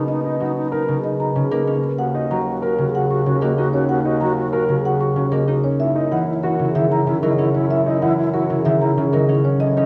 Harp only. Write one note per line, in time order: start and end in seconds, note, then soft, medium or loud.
0.00 0.87 C#3 medium
0.00 0.39 F#3 soft
0.00 1.50 A#3 medium
0.00 1.61 B3 medium
0.00 1.66 C#4 medium
0.40 2.29 F#3 soft
0.88 1.34 C#3 medium
1.36 2.00 C#3 medium
1.51 3.41 A#3 medium
1.67 2.00 C#4 medium
2.31 4.20 F#3 soft
2.78 3.25 C#3 medium
3.26 4.67 C#3 medium
3.42 5.31 A#3 medium
3.58 5.47 D#4 medium
4.21 7.21 F#3 medium
4.69 5.15 C#3 medium
5.16 5.81 C#3 medium
5.32 9.22 A#3 medium
5.48 5.81 D#4 medium
6.11 8.01 E3 medium
6.59 7.06 C#3 medium
6.75 8.64 D#3 medium
7.07 8.49 C#3 medium
7.23 9.12 F#3 medium
7.38 9.28 C#4 medium
8.02 9.62 E3 medium
8.50 8.96 C#3 medium
8.65 9.62 D#3 medium
8.97 9.62 C#3 medium
9.13 9.62 F#3 medium
9.29 9.76 C#4 medium
9.77 9.86 C#4 medium